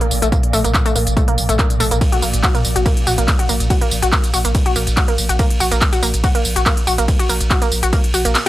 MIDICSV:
0, 0, Header, 1, 5, 480
1, 0, Start_track
1, 0, Tempo, 422535
1, 366, Time_signature, 4, 2, 24, 8
1, 9642, End_track
2, 0, Start_track
2, 0, Title_t, "Synth arpeggio sound"
2, 0, Program_c, 0, 84
2, 12, Note_on_c, 0, 58, 78
2, 81, Note_off_c, 0, 58, 0
2, 252, Note_on_c, 0, 57, 106
2, 322, Note_off_c, 0, 57, 0
2, 365, Note_on_c, 0, 58, 82
2, 443, Note_off_c, 0, 58, 0
2, 605, Note_on_c, 0, 57, 106
2, 683, Note_off_c, 0, 57, 0
2, 732, Note_on_c, 0, 58, 76
2, 802, Note_off_c, 0, 58, 0
2, 973, Note_on_c, 0, 57, 106
2, 1042, Note_off_c, 0, 57, 0
2, 1086, Note_on_c, 0, 58, 77
2, 1164, Note_off_c, 0, 58, 0
2, 1325, Note_on_c, 0, 57, 103
2, 1403, Note_off_c, 0, 57, 0
2, 1453, Note_on_c, 0, 58, 76
2, 1522, Note_off_c, 0, 58, 0
2, 1692, Note_on_c, 0, 57, 105
2, 1762, Note_off_c, 0, 57, 0
2, 1805, Note_on_c, 0, 58, 86
2, 1883, Note_off_c, 0, 58, 0
2, 2045, Note_on_c, 0, 57, 106
2, 2123, Note_off_c, 0, 57, 0
2, 2172, Note_on_c, 0, 58, 76
2, 2242, Note_off_c, 0, 58, 0
2, 2412, Note_on_c, 0, 66, 74
2, 2459, Note_off_c, 0, 66, 0
2, 2526, Note_on_c, 0, 58, 79
2, 2603, Note_off_c, 0, 58, 0
2, 2765, Note_on_c, 0, 66, 83
2, 2817, Note_off_c, 0, 66, 0
2, 2892, Note_on_c, 0, 58, 80
2, 2962, Note_off_c, 0, 58, 0
2, 3132, Note_on_c, 0, 66, 78
2, 3178, Note_off_c, 0, 66, 0
2, 3245, Note_on_c, 0, 58, 84
2, 3323, Note_off_c, 0, 58, 0
2, 3485, Note_on_c, 0, 66, 79
2, 3537, Note_off_c, 0, 66, 0
2, 3612, Note_on_c, 0, 58, 80
2, 3681, Note_off_c, 0, 58, 0
2, 3851, Note_on_c, 0, 66, 77
2, 3898, Note_off_c, 0, 66, 0
2, 3965, Note_on_c, 0, 58, 80
2, 4043, Note_off_c, 0, 58, 0
2, 4205, Note_on_c, 0, 66, 83
2, 4257, Note_off_c, 0, 66, 0
2, 4332, Note_on_c, 0, 58, 76
2, 4402, Note_off_c, 0, 58, 0
2, 4572, Note_on_c, 0, 66, 80
2, 4619, Note_off_c, 0, 66, 0
2, 4685, Note_on_c, 0, 58, 84
2, 4763, Note_off_c, 0, 58, 0
2, 4925, Note_on_c, 0, 66, 76
2, 4977, Note_off_c, 0, 66, 0
2, 5052, Note_on_c, 0, 58, 78
2, 5121, Note_off_c, 0, 58, 0
2, 5292, Note_on_c, 0, 66, 75
2, 5339, Note_off_c, 0, 66, 0
2, 5405, Note_on_c, 0, 58, 78
2, 5483, Note_off_c, 0, 58, 0
2, 5645, Note_on_c, 0, 66, 84
2, 5697, Note_off_c, 0, 66, 0
2, 5772, Note_on_c, 0, 58, 75
2, 5842, Note_off_c, 0, 58, 0
2, 6012, Note_on_c, 0, 66, 76
2, 6058, Note_off_c, 0, 66, 0
2, 6125, Note_on_c, 0, 58, 83
2, 6203, Note_off_c, 0, 58, 0
2, 6365, Note_on_c, 0, 66, 79
2, 6417, Note_off_c, 0, 66, 0
2, 6492, Note_on_c, 0, 58, 76
2, 6562, Note_off_c, 0, 58, 0
2, 6733, Note_on_c, 0, 66, 78
2, 6779, Note_off_c, 0, 66, 0
2, 6846, Note_on_c, 0, 58, 77
2, 6923, Note_off_c, 0, 58, 0
2, 7085, Note_on_c, 0, 66, 86
2, 7137, Note_off_c, 0, 66, 0
2, 7212, Note_on_c, 0, 58, 79
2, 7282, Note_off_c, 0, 58, 0
2, 7452, Note_on_c, 0, 66, 80
2, 7499, Note_off_c, 0, 66, 0
2, 7566, Note_on_c, 0, 58, 83
2, 7643, Note_off_c, 0, 58, 0
2, 7806, Note_on_c, 0, 66, 78
2, 7857, Note_off_c, 0, 66, 0
2, 7933, Note_on_c, 0, 58, 79
2, 8002, Note_off_c, 0, 58, 0
2, 8172, Note_on_c, 0, 66, 78
2, 8219, Note_off_c, 0, 66, 0
2, 8286, Note_on_c, 0, 58, 78
2, 8363, Note_off_c, 0, 58, 0
2, 8526, Note_on_c, 0, 66, 83
2, 8578, Note_off_c, 0, 66, 0
2, 8652, Note_on_c, 0, 58, 80
2, 8722, Note_off_c, 0, 58, 0
2, 8893, Note_on_c, 0, 66, 76
2, 8939, Note_off_c, 0, 66, 0
2, 9006, Note_on_c, 0, 58, 83
2, 9084, Note_off_c, 0, 58, 0
2, 9246, Note_on_c, 0, 66, 79
2, 9297, Note_off_c, 0, 66, 0
2, 9372, Note_on_c, 0, 58, 77
2, 9442, Note_off_c, 0, 58, 0
2, 9642, End_track
3, 0, Start_track
3, 0, Title_t, "Synth drone"
3, 0, Program_c, 1, 95
3, 0, Note_on_c, 1, 46, 82
3, 9642, Note_off_c, 1, 46, 0
3, 9642, End_track
4, 0, Start_track
4, 0, Title_t, "Sub bass"
4, 0, Program_c, 2, 38
4, 126, Note_on_c, 2, 34, 97
4, 246, Note_off_c, 2, 34, 0
4, 253, Note_on_c, 2, 34, 84
4, 364, Note_off_c, 2, 34, 0
4, 606, Note_on_c, 2, 34, 101
4, 726, Note_off_c, 2, 34, 0
4, 733, Note_on_c, 2, 34, 82
4, 844, Note_off_c, 2, 34, 0
4, 1086, Note_on_c, 2, 34, 102
4, 1206, Note_off_c, 2, 34, 0
4, 1213, Note_on_c, 2, 34, 85
4, 1323, Note_off_c, 2, 34, 0
4, 1565, Note_on_c, 2, 34, 97
4, 1686, Note_off_c, 2, 34, 0
4, 1693, Note_on_c, 2, 34, 82
4, 1803, Note_off_c, 2, 34, 0
4, 2045, Note_on_c, 2, 34, 100
4, 2165, Note_off_c, 2, 34, 0
4, 2172, Note_on_c, 2, 34, 85
4, 2283, Note_off_c, 2, 34, 0
4, 2525, Note_on_c, 2, 34, 103
4, 2645, Note_off_c, 2, 34, 0
4, 2652, Note_on_c, 2, 34, 82
4, 2763, Note_off_c, 2, 34, 0
4, 3005, Note_on_c, 2, 34, 101
4, 3125, Note_off_c, 2, 34, 0
4, 3132, Note_on_c, 2, 34, 86
4, 3243, Note_off_c, 2, 34, 0
4, 3485, Note_on_c, 2, 34, 97
4, 3605, Note_off_c, 2, 34, 0
4, 3612, Note_on_c, 2, 34, 84
4, 3723, Note_off_c, 2, 34, 0
4, 3965, Note_on_c, 2, 34, 100
4, 4085, Note_off_c, 2, 34, 0
4, 4092, Note_on_c, 2, 34, 81
4, 4203, Note_off_c, 2, 34, 0
4, 4445, Note_on_c, 2, 34, 100
4, 4565, Note_off_c, 2, 34, 0
4, 4572, Note_on_c, 2, 34, 82
4, 4683, Note_off_c, 2, 34, 0
4, 4926, Note_on_c, 2, 34, 99
4, 5045, Note_off_c, 2, 34, 0
4, 5052, Note_on_c, 2, 34, 82
4, 5163, Note_off_c, 2, 34, 0
4, 5405, Note_on_c, 2, 34, 96
4, 5525, Note_off_c, 2, 34, 0
4, 5532, Note_on_c, 2, 34, 82
4, 5643, Note_off_c, 2, 34, 0
4, 5885, Note_on_c, 2, 34, 99
4, 6005, Note_off_c, 2, 34, 0
4, 6012, Note_on_c, 2, 34, 83
4, 6123, Note_off_c, 2, 34, 0
4, 6365, Note_on_c, 2, 34, 102
4, 6485, Note_off_c, 2, 34, 0
4, 6492, Note_on_c, 2, 34, 85
4, 6603, Note_off_c, 2, 34, 0
4, 6845, Note_on_c, 2, 34, 105
4, 6965, Note_off_c, 2, 34, 0
4, 6972, Note_on_c, 2, 34, 84
4, 7083, Note_off_c, 2, 34, 0
4, 7325, Note_on_c, 2, 34, 96
4, 7445, Note_off_c, 2, 34, 0
4, 7452, Note_on_c, 2, 34, 80
4, 7563, Note_off_c, 2, 34, 0
4, 7805, Note_on_c, 2, 34, 100
4, 7925, Note_off_c, 2, 34, 0
4, 7932, Note_on_c, 2, 34, 85
4, 8043, Note_off_c, 2, 34, 0
4, 8285, Note_on_c, 2, 34, 104
4, 8405, Note_off_c, 2, 34, 0
4, 8412, Note_on_c, 2, 34, 80
4, 8523, Note_off_c, 2, 34, 0
4, 8765, Note_on_c, 2, 34, 107
4, 8885, Note_off_c, 2, 34, 0
4, 8892, Note_on_c, 2, 34, 85
4, 9003, Note_off_c, 2, 34, 0
4, 9245, Note_on_c, 2, 34, 96
4, 9366, Note_off_c, 2, 34, 0
4, 9372, Note_on_c, 2, 34, 81
4, 9483, Note_off_c, 2, 34, 0
4, 9642, End_track
5, 0, Start_track
5, 0, Title_t, "Drums"
5, 12, Note_on_c, 9, 42, 69
5, 126, Note_off_c, 9, 42, 0
5, 126, Note_on_c, 9, 46, 111
5, 126, Note_on_c, 9, 54, 73
5, 239, Note_off_c, 9, 46, 0
5, 239, Note_off_c, 9, 54, 0
5, 253, Note_on_c, 9, 42, 70
5, 253, Note_on_c, 9, 54, 33
5, 366, Note_off_c, 9, 42, 0
5, 366, Note_off_c, 9, 54, 0
5, 366, Note_on_c, 9, 36, 127
5, 366, Note_on_c, 9, 42, 64
5, 366, Note_on_c, 9, 54, 44
5, 479, Note_off_c, 9, 36, 0
5, 479, Note_off_c, 9, 42, 0
5, 479, Note_off_c, 9, 54, 0
5, 492, Note_on_c, 9, 42, 67
5, 606, Note_off_c, 9, 42, 0
5, 606, Note_on_c, 9, 46, 109
5, 606, Note_on_c, 9, 54, 77
5, 719, Note_off_c, 9, 46, 0
5, 719, Note_off_c, 9, 54, 0
5, 733, Note_on_c, 9, 42, 69
5, 733, Note_on_c, 9, 54, 33
5, 846, Note_off_c, 9, 42, 0
5, 846, Note_off_c, 9, 54, 0
5, 846, Note_on_c, 9, 36, 123
5, 846, Note_on_c, 9, 39, 114
5, 846, Note_on_c, 9, 42, 66
5, 846, Note_on_c, 9, 54, 44
5, 959, Note_off_c, 9, 36, 0
5, 959, Note_off_c, 9, 39, 0
5, 959, Note_off_c, 9, 42, 0
5, 959, Note_off_c, 9, 54, 0
5, 973, Note_on_c, 9, 42, 67
5, 973, Note_on_c, 9, 54, 32
5, 1086, Note_off_c, 9, 42, 0
5, 1086, Note_off_c, 9, 54, 0
5, 1086, Note_on_c, 9, 46, 112
5, 1086, Note_on_c, 9, 54, 78
5, 1199, Note_off_c, 9, 46, 0
5, 1199, Note_off_c, 9, 54, 0
5, 1213, Note_on_c, 9, 42, 66
5, 1213, Note_on_c, 9, 54, 33
5, 1326, Note_off_c, 9, 42, 0
5, 1326, Note_off_c, 9, 54, 0
5, 1326, Note_on_c, 9, 36, 124
5, 1326, Note_on_c, 9, 42, 65
5, 1326, Note_on_c, 9, 54, 44
5, 1439, Note_off_c, 9, 36, 0
5, 1440, Note_off_c, 9, 42, 0
5, 1440, Note_off_c, 9, 54, 0
5, 1453, Note_on_c, 9, 42, 67
5, 1566, Note_on_c, 9, 46, 106
5, 1566, Note_on_c, 9, 54, 75
5, 1567, Note_off_c, 9, 42, 0
5, 1680, Note_off_c, 9, 46, 0
5, 1680, Note_off_c, 9, 54, 0
5, 1693, Note_on_c, 9, 42, 65
5, 1693, Note_on_c, 9, 54, 32
5, 1806, Note_off_c, 9, 42, 0
5, 1806, Note_off_c, 9, 54, 0
5, 1806, Note_on_c, 9, 36, 126
5, 1806, Note_on_c, 9, 39, 119
5, 1806, Note_on_c, 9, 42, 69
5, 1806, Note_on_c, 9, 54, 45
5, 1919, Note_off_c, 9, 36, 0
5, 1920, Note_off_c, 9, 39, 0
5, 1920, Note_off_c, 9, 42, 0
5, 1920, Note_off_c, 9, 54, 0
5, 1933, Note_on_c, 9, 42, 67
5, 1933, Note_on_c, 9, 54, 30
5, 2046, Note_off_c, 9, 42, 0
5, 2046, Note_off_c, 9, 54, 0
5, 2046, Note_on_c, 9, 46, 110
5, 2046, Note_on_c, 9, 54, 75
5, 2160, Note_off_c, 9, 46, 0
5, 2160, Note_off_c, 9, 54, 0
5, 2173, Note_on_c, 9, 42, 68
5, 2173, Note_on_c, 9, 54, 34
5, 2286, Note_off_c, 9, 42, 0
5, 2286, Note_off_c, 9, 54, 0
5, 2286, Note_on_c, 9, 36, 123
5, 2286, Note_on_c, 9, 42, 64
5, 2286, Note_on_c, 9, 51, 70
5, 2286, Note_on_c, 9, 54, 45
5, 2399, Note_off_c, 9, 36, 0
5, 2400, Note_off_c, 9, 42, 0
5, 2400, Note_off_c, 9, 51, 0
5, 2400, Note_off_c, 9, 54, 0
5, 2413, Note_on_c, 9, 42, 67
5, 2526, Note_off_c, 9, 42, 0
5, 2526, Note_on_c, 9, 46, 110
5, 2526, Note_on_c, 9, 54, 81
5, 2639, Note_off_c, 9, 46, 0
5, 2639, Note_off_c, 9, 54, 0
5, 2653, Note_on_c, 9, 42, 64
5, 2653, Note_on_c, 9, 54, 34
5, 2766, Note_off_c, 9, 42, 0
5, 2766, Note_off_c, 9, 54, 0
5, 2766, Note_on_c, 9, 36, 120
5, 2766, Note_on_c, 9, 39, 114
5, 2766, Note_on_c, 9, 42, 64
5, 2766, Note_on_c, 9, 51, 69
5, 2766, Note_on_c, 9, 54, 44
5, 2879, Note_off_c, 9, 36, 0
5, 2880, Note_off_c, 9, 39, 0
5, 2880, Note_off_c, 9, 42, 0
5, 2880, Note_off_c, 9, 51, 0
5, 2880, Note_off_c, 9, 54, 0
5, 2893, Note_on_c, 9, 42, 65
5, 2893, Note_on_c, 9, 54, 33
5, 3006, Note_off_c, 9, 54, 0
5, 3006, Note_on_c, 9, 46, 110
5, 3006, Note_on_c, 9, 54, 78
5, 3007, Note_off_c, 9, 42, 0
5, 3120, Note_off_c, 9, 46, 0
5, 3120, Note_off_c, 9, 54, 0
5, 3133, Note_on_c, 9, 42, 64
5, 3133, Note_on_c, 9, 54, 33
5, 3246, Note_off_c, 9, 42, 0
5, 3246, Note_off_c, 9, 54, 0
5, 3246, Note_on_c, 9, 36, 122
5, 3246, Note_on_c, 9, 42, 67
5, 3246, Note_on_c, 9, 51, 69
5, 3246, Note_on_c, 9, 54, 46
5, 3359, Note_off_c, 9, 36, 0
5, 3360, Note_off_c, 9, 42, 0
5, 3360, Note_off_c, 9, 51, 0
5, 3360, Note_off_c, 9, 54, 0
5, 3373, Note_on_c, 9, 42, 64
5, 3486, Note_off_c, 9, 42, 0
5, 3486, Note_on_c, 9, 46, 105
5, 3486, Note_on_c, 9, 54, 77
5, 3600, Note_off_c, 9, 46, 0
5, 3600, Note_off_c, 9, 54, 0
5, 3612, Note_on_c, 9, 42, 64
5, 3612, Note_on_c, 9, 54, 34
5, 3726, Note_off_c, 9, 42, 0
5, 3726, Note_off_c, 9, 54, 0
5, 3726, Note_on_c, 9, 36, 117
5, 3726, Note_on_c, 9, 39, 121
5, 3726, Note_on_c, 9, 42, 67
5, 3726, Note_on_c, 9, 51, 71
5, 3726, Note_on_c, 9, 54, 48
5, 3839, Note_off_c, 9, 36, 0
5, 3839, Note_off_c, 9, 39, 0
5, 3839, Note_off_c, 9, 42, 0
5, 3839, Note_off_c, 9, 51, 0
5, 3839, Note_off_c, 9, 54, 0
5, 3853, Note_on_c, 9, 42, 65
5, 3966, Note_off_c, 9, 42, 0
5, 3966, Note_on_c, 9, 46, 109
5, 3966, Note_on_c, 9, 54, 77
5, 4079, Note_off_c, 9, 46, 0
5, 4079, Note_off_c, 9, 54, 0
5, 4092, Note_on_c, 9, 42, 67
5, 4092, Note_on_c, 9, 54, 34
5, 4206, Note_off_c, 9, 42, 0
5, 4206, Note_off_c, 9, 54, 0
5, 4206, Note_on_c, 9, 36, 119
5, 4206, Note_on_c, 9, 42, 66
5, 4206, Note_on_c, 9, 51, 71
5, 4206, Note_on_c, 9, 54, 45
5, 4319, Note_off_c, 9, 36, 0
5, 4320, Note_off_c, 9, 42, 0
5, 4320, Note_off_c, 9, 51, 0
5, 4320, Note_off_c, 9, 54, 0
5, 4333, Note_on_c, 9, 42, 64
5, 4446, Note_off_c, 9, 42, 0
5, 4446, Note_on_c, 9, 46, 102
5, 4446, Note_on_c, 9, 54, 81
5, 4559, Note_off_c, 9, 46, 0
5, 4559, Note_off_c, 9, 54, 0
5, 4573, Note_on_c, 9, 42, 65
5, 4573, Note_on_c, 9, 54, 34
5, 4686, Note_off_c, 9, 42, 0
5, 4686, Note_off_c, 9, 54, 0
5, 4686, Note_on_c, 9, 36, 117
5, 4686, Note_on_c, 9, 39, 121
5, 4686, Note_on_c, 9, 42, 64
5, 4686, Note_on_c, 9, 51, 69
5, 4686, Note_on_c, 9, 54, 46
5, 4799, Note_off_c, 9, 36, 0
5, 4799, Note_off_c, 9, 39, 0
5, 4799, Note_off_c, 9, 42, 0
5, 4799, Note_off_c, 9, 51, 0
5, 4799, Note_off_c, 9, 54, 0
5, 4813, Note_on_c, 9, 42, 65
5, 4813, Note_on_c, 9, 54, 32
5, 4925, Note_off_c, 9, 54, 0
5, 4925, Note_on_c, 9, 46, 103
5, 4925, Note_on_c, 9, 54, 80
5, 4926, Note_off_c, 9, 42, 0
5, 5039, Note_off_c, 9, 46, 0
5, 5039, Note_off_c, 9, 54, 0
5, 5052, Note_on_c, 9, 42, 65
5, 5052, Note_on_c, 9, 54, 33
5, 5166, Note_off_c, 9, 42, 0
5, 5166, Note_off_c, 9, 54, 0
5, 5166, Note_on_c, 9, 36, 114
5, 5166, Note_on_c, 9, 42, 64
5, 5166, Note_on_c, 9, 51, 70
5, 5166, Note_on_c, 9, 54, 45
5, 5279, Note_off_c, 9, 42, 0
5, 5279, Note_off_c, 9, 51, 0
5, 5279, Note_off_c, 9, 54, 0
5, 5280, Note_off_c, 9, 36, 0
5, 5292, Note_on_c, 9, 42, 62
5, 5405, Note_on_c, 9, 46, 100
5, 5405, Note_on_c, 9, 54, 79
5, 5406, Note_off_c, 9, 42, 0
5, 5518, Note_off_c, 9, 46, 0
5, 5518, Note_off_c, 9, 54, 0
5, 5532, Note_on_c, 9, 42, 65
5, 5532, Note_on_c, 9, 54, 35
5, 5645, Note_off_c, 9, 42, 0
5, 5645, Note_off_c, 9, 54, 0
5, 5645, Note_on_c, 9, 39, 121
5, 5645, Note_on_c, 9, 42, 64
5, 5645, Note_on_c, 9, 51, 73
5, 5645, Note_on_c, 9, 54, 45
5, 5646, Note_on_c, 9, 36, 113
5, 5758, Note_off_c, 9, 39, 0
5, 5758, Note_off_c, 9, 42, 0
5, 5758, Note_off_c, 9, 51, 0
5, 5758, Note_off_c, 9, 54, 0
5, 5760, Note_off_c, 9, 36, 0
5, 5772, Note_on_c, 9, 42, 65
5, 5885, Note_off_c, 9, 42, 0
5, 5885, Note_on_c, 9, 46, 104
5, 5885, Note_on_c, 9, 54, 78
5, 5999, Note_off_c, 9, 46, 0
5, 5999, Note_off_c, 9, 54, 0
5, 6012, Note_on_c, 9, 42, 67
5, 6012, Note_on_c, 9, 54, 36
5, 6125, Note_off_c, 9, 42, 0
5, 6125, Note_off_c, 9, 54, 0
5, 6125, Note_on_c, 9, 42, 68
5, 6125, Note_on_c, 9, 51, 73
5, 6125, Note_on_c, 9, 54, 44
5, 6126, Note_on_c, 9, 36, 118
5, 6239, Note_off_c, 9, 42, 0
5, 6239, Note_off_c, 9, 51, 0
5, 6239, Note_off_c, 9, 54, 0
5, 6240, Note_off_c, 9, 36, 0
5, 6252, Note_on_c, 9, 42, 65
5, 6365, Note_on_c, 9, 46, 105
5, 6365, Note_on_c, 9, 54, 77
5, 6366, Note_off_c, 9, 42, 0
5, 6478, Note_off_c, 9, 46, 0
5, 6478, Note_off_c, 9, 54, 0
5, 6492, Note_on_c, 9, 42, 65
5, 6492, Note_on_c, 9, 54, 34
5, 6606, Note_off_c, 9, 42, 0
5, 6606, Note_off_c, 9, 54, 0
5, 6606, Note_on_c, 9, 36, 116
5, 6606, Note_on_c, 9, 39, 122
5, 6606, Note_on_c, 9, 42, 64
5, 6606, Note_on_c, 9, 51, 71
5, 6606, Note_on_c, 9, 54, 44
5, 6719, Note_off_c, 9, 39, 0
5, 6719, Note_off_c, 9, 42, 0
5, 6719, Note_off_c, 9, 51, 0
5, 6719, Note_off_c, 9, 54, 0
5, 6720, Note_off_c, 9, 36, 0
5, 6732, Note_on_c, 9, 42, 67
5, 6732, Note_on_c, 9, 54, 31
5, 6846, Note_off_c, 9, 42, 0
5, 6846, Note_off_c, 9, 54, 0
5, 6846, Note_on_c, 9, 46, 102
5, 6846, Note_on_c, 9, 54, 77
5, 6959, Note_off_c, 9, 46, 0
5, 6959, Note_off_c, 9, 54, 0
5, 6973, Note_on_c, 9, 42, 64
5, 6973, Note_on_c, 9, 54, 33
5, 7085, Note_off_c, 9, 42, 0
5, 7085, Note_off_c, 9, 54, 0
5, 7085, Note_on_c, 9, 42, 67
5, 7085, Note_on_c, 9, 51, 73
5, 7085, Note_on_c, 9, 54, 46
5, 7086, Note_on_c, 9, 36, 112
5, 7199, Note_off_c, 9, 42, 0
5, 7199, Note_off_c, 9, 51, 0
5, 7199, Note_off_c, 9, 54, 0
5, 7200, Note_off_c, 9, 36, 0
5, 7212, Note_on_c, 9, 42, 65
5, 7326, Note_off_c, 9, 42, 0
5, 7326, Note_on_c, 9, 46, 100
5, 7326, Note_on_c, 9, 54, 76
5, 7439, Note_off_c, 9, 46, 0
5, 7439, Note_off_c, 9, 54, 0
5, 7453, Note_on_c, 9, 42, 65
5, 7453, Note_on_c, 9, 54, 33
5, 7566, Note_off_c, 9, 42, 0
5, 7566, Note_off_c, 9, 54, 0
5, 7566, Note_on_c, 9, 36, 113
5, 7566, Note_on_c, 9, 39, 127
5, 7566, Note_on_c, 9, 42, 69
5, 7566, Note_on_c, 9, 51, 74
5, 7566, Note_on_c, 9, 54, 45
5, 7680, Note_off_c, 9, 36, 0
5, 7680, Note_off_c, 9, 39, 0
5, 7680, Note_off_c, 9, 42, 0
5, 7680, Note_off_c, 9, 51, 0
5, 7680, Note_off_c, 9, 54, 0
5, 7692, Note_on_c, 9, 42, 66
5, 7806, Note_off_c, 9, 42, 0
5, 7806, Note_on_c, 9, 46, 102
5, 7806, Note_on_c, 9, 54, 77
5, 7920, Note_off_c, 9, 46, 0
5, 7920, Note_off_c, 9, 54, 0
5, 7933, Note_on_c, 9, 42, 70
5, 7933, Note_on_c, 9, 54, 34
5, 8046, Note_off_c, 9, 42, 0
5, 8046, Note_off_c, 9, 54, 0
5, 8046, Note_on_c, 9, 36, 120
5, 8046, Note_on_c, 9, 42, 70
5, 8046, Note_on_c, 9, 51, 70
5, 8046, Note_on_c, 9, 54, 42
5, 8160, Note_off_c, 9, 36, 0
5, 8160, Note_off_c, 9, 42, 0
5, 8160, Note_off_c, 9, 51, 0
5, 8160, Note_off_c, 9, 54, 0
5, 8173, Note_on_c, 9, 42, 70
5, 8173, Note_on_c, 9, 54, 30
5, 8286, Note_off_c, 9, 42, 0
5, 8286, Note_off_c, 9, 54, 0
5, 8286, Note_on_c, 9, 46, 105
5, 8286, Note_on_c, 9, 54, 76
5, 8400, Note_off_c, 9, 46, 0
5, 8400, Note_off_c, 9, 54, 0
5, 8413, Note_on_c, 9, 42, 71
5, 8413, Note_on_c, 9, 54, 33
5, 8526, Note_off_c, 9, 42, 0
5, 8526, Note_off_c, 9, 54, 0
5, 8526, Note_on_c, 9, 36, 114
5, 8526, Note_on_c, 9, 39, 127
5, 8526, Note_on_c, 9, 42, 69
5, 8526, Note_on_c, 9, 51, 71
5, 8526, Note_on_c, 9, 54, 42
5, 8640, Note_off_c, 9, 36, 0
5, 8640, Note_off_c, 9, 39, 0
5, 8640, Note_off_c, 9, 42, 0
5, 8640, Note_off_c, 9, 51, 0
5, 8640, Note_off_c, 9, 54, 0
5, 8653, Note_on_c, 9, 42, 72
5, 8653, Note_on_c, 9, 54, 31
5, 8766, Note_off_c, 9, 54, 0
5, 8766, Note_on_c, 9, 46, 102
5, 8766, Note_on_c, 9, 54, 77
5, 8767, Note_off_c, 9, 42, 0
5, 8880, Note_off_c, 9, 46, 0
5, 8880, Note_off_c, 9, 54, 0
5, 8893, Note_on_c, 9, 42, 68
5, 8893, Note_on_c, 9, 54, 32
5, 9006, Note_off_c, 9, 42, 0
5, 9006, Note_off_c, 9, 54, 0
5, 9006, Note_on_c, 9, 36, 117
5, 9006, Note_on_c, 9, 42, 71
5, 9006, Note_on_c, 9, 51, 74
5, 9006, Note_on_c, 9, 54, 43
5, 9120, Note_off_c, 9, 36, 0
5, 9120, Note_off_c, 9, 42, 0
5, 9120, Note_off_c, 9, 51, 0
5, 9120, Note_off_c, 9, 54, 0
5, 9133, Note_on_c, 9, 42, 69
5, 9246, Note_off_c, 9, 42, 0
5, 9246, Note_on_c, 9, 46, 102
5, 9246, Note_on_c, 9, 54, 74
5, 9360, Note_off_c, 9, 46, 0
5, 9360, Note_off_c, 9, 54, 0
5, 9373, Note_on_c, 9, 42, 67
5, 9373, Note_on_c, 9, 54, 32
5, 9486, Note_off_c, 9, 42, 0
5, 9486, Note_off_c, 9, 54, 0
5, 9486, Note_on_c, 9, 38, 65
5, 9486, Note_on_c, 9, 39, 127
5, 9486, Note_on_c, 9, 42, 68
5, 9486, Note_on_c, 9, 51, 72
5, 9486, Note_on_c, 9, 54, 44
5, 9600, Note_off_c, 9, 38, 0
5, 9600, Note_off_c, 9, 39, 0
5, 9600, Note_off_c, 9, 42, 0
5, 9600, Note_off_c, 9, 51, 0
5, 9600, Note_off_c, 9, 54, 0
5, 9642, End_track
0, 0, End_of_file